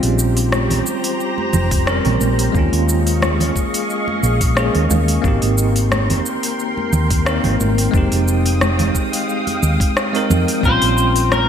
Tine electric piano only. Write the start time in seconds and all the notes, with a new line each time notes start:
Already playing: G3 C4 C#4 F4
1.86 G3 C4 C#4 A#4
2.52 G#3 A#3
2.57 C#4 F4
4.55 G#3 A#3 C#4 G#4
5.22 A#3 C4
5.26 D#4 G4
7.26 A#3 C4 D#4 A#4
7.91 G#3 C4
7.95 D#4 G4
10.13 G#3 C4 D#4 A#4
10.61 G3 C4
10.65 C#4 F4